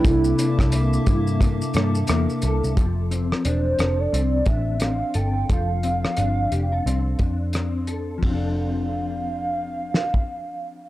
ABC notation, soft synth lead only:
X:1
M:4/4
L:1/16
Q:"Swing 16ths" 1/4=88
K:F
V:1 name="Soft synth lead"
E12 z4 | z4 c3 d3 e2 f2 g2 | f12 z4 | f16 |]